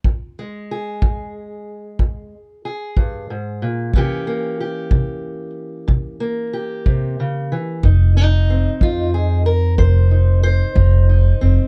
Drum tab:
BD |o--o--o--o--|o--o--o--o--|o--o--o--o--|